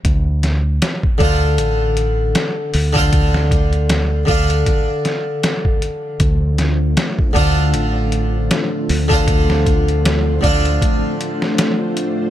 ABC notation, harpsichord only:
X:1
M:4/4
L:1/16
Q:"Swing 16ths" 1/4=78
K:Dm
V:1 name="Harpsichord"
z6 [D,DFc]8- [D,DFc] [D,DFc]- | [D,DFc]6 [D,DFd]8- [D,DFd]2- | [D,DFd]6 [D,DFc]8- [D,DFc] [D,DFc]- | [D,DFc]6 [D,DFd]8- [D,DFd]2 |]